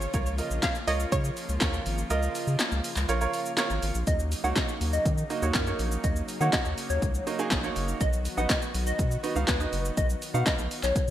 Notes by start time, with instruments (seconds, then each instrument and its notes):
Already playing: supersaw synth C#3 A#3 F4, synth pluck C#5
0.02 shaker
0.14 analog synth bass C#2, supersaw synth F3 A#3, grand piano F4 A#4 C#5, kick, closed hi-hat, shaker
0.26 shaker
0.38 grand piano F4 A#4 D#5, open hi-hat, shaker
0.51 analog synth bass A#1, shaker
0.63 synth pluck F5, kick, snare, clap, closed hi-hat, shaker
0.75 shaker
0.87 analog synth bass C#2, grand piano F4 A#4 C#5, synth pluck D#5, open hi-hat, shaker
1.00 shaker
1.12 analog synth bass C#3, synth pluck C#5, kick, closed hi-hat, shaker
1.24 shaker
1.37 open hi-hat, shaker
1.49 analog synth bass C#2, shaker
1.60 analog synth bass D#2, grand piano F4 A#4 C#5, kick, snare, clap, closed hi-hat, shaker
1.74 shaker
1.86 analog synth bass G#1, open hi-hat, shaker
1.98 shaker
2.10 analog synth bass C#2, grand piano F4 A#4 D#5, closed hi-hat, shaker
2.23 shaker
2.35 open hi-hat, shaker
2.47 analog synth bass C#3, shaker
2.59 snare, clap, closed hi-hat, shaker
2.72 analog synth bass C#2, shaker
2.84 open hi-hat, shaker
2.96 analog synth bass C#2, clap, shaker
3.09 analog synth bass A#1, grand piano F4 A#4 C#5, closed hi-hat, shaker
3.21 grand piano F4 A#4 C#5, shaker
3.33 open hi-hat, shaker
3.46 shaker
3.57 grand piano F4 A#4 C#5, snare, clap, closed hi-hat, shaker
3.70 analog synth bass G#1, shaker
3.83 analog synth bass G#1, open hi-hat, shaker
3.95 analog synth bass A#1, shaker
4.07 analog synth bass D#2, supersaw synth C#3 F#3 A#3 D#4, digital synth lead D#5, kick, closed hi-hat, shaker
4.19 shaker
4.32 open hi-hat, shaker
4.44 analog synth bass C#2, grand piano A#3 D#4 F#4 C#5, digital synth lead F#5, shaker
4.56 digital synth lead D#5, kick, snare, clap, closed hi-hat, shaker
4.68 shaker
4.81 analog synth bass D#2, open hi-hat, shaker
4.93 digital synth lead D#5, shaker
5.05 analog synth bass D#3, kick, closed hi-hat, shaker
5.18 shaker
5.30 grand piano A#3 D#4 F#4 D#5, open hi-hat, shaker
5.42 analog synth bass D#2, grand piano A#3 D#4 F#4 C#5, shaker
5.54 analog synth bass F#2, digital synth lead A#4, kick, snare, clap, closed hi-hat, shaker
5.67 grand piano A#3 D#4 F#4 C#5, shaker
5.79 analog synth bass A#1, open hi-hat, shaker
5.92 shaker
6.04 analog synth bass D#2, digital synth lead D#5, kick, closed hi-hat, shaker
6.16 shaker
6.28 open hi-hat, shaker
6.41 analog synth bass D#3, grand piano A#3 D#4 F#4 C#5, digital synth lead F#5, shaker
6.53 digital synth lead D#5, kick, snare, clap, closed hi-hat, shaker
6.65 analog synth bass D#2, shaker
6.78 open hi-hat, shaker
6.90 analog synth bass D#2, digital synth lead C#5, shaker
7.02 analog synth bass C#2, kick, closed hi-hat, shaker
7.15 shaker
7.27 grand piano A#3 D#4 F#4 D#5, open hi-hat, shaker
7.39 grand piano A#3 D#4 F#4 G#4, shaker
7.51 analog synth bass A#1, kick, snare, clap, closed hi-hat, shaker
7.64 grand piano A#3 D#4 F#4 C#5, shaker
7.76 analog synth bass F#1, open hi-hat, shaker
7.88 shaker
8.01 analog synth bass B1, supersaw synth D#3 B3 F#4, digital synth lead D#5, kick, closed hi-hat, shaker
8.13 shaker
8.25 open hi-hat, shaker
8.37 analog synth bass A#1, grand piano B3 D#4 F#4 D#5, digital synth lead F#5, shaker
8.49 digital synth lead D#5, kick, snare, clap, closed hi-hat, shaker
8.62 shaker
8.74 analog synth bass B1, open hi-hat, shaker
8.87 digital synth lead D#5, shaker
8.99 analog synth bass B2, kick, closed hi-hat, shaker
9.11 shaker
9.23 grand piano B3 D#4 F#4 D#5, open hi-hat, shaker
9.36 analog synth bass C#2, grand piano B3 D#4 F#4 F5, shaker
9.47 analog synth bass D#2, digital synth lead B4, kick, snare, clap, closed hi-hat, shaker
9.60 grand piano B3 D#4 F#4 D#5, shaker
9.73 analog synth bass F#1, open hi-hat, shaker
9.85 shaker
9.97 analog synth bass B1, digital synth lead D#5, kick, closed hi-hat, shaker
10.10 shaker
10.22 open hi-hat, shaker
10.34 analog synth bass B2, grand piano B3 D#4 F#4 F5, digital synth lead F#5, shaker
10.46 digital synth lead D#5, kick, snare, clap, closed hi-hat, shaker
10.59 analog synth bass B1, shaker
10.71 open hi-hat, shaker
10.83 analog synth bass B1, digital synth lead C#5, clap, shaker
10.96 kick, closed hi-hat, shaker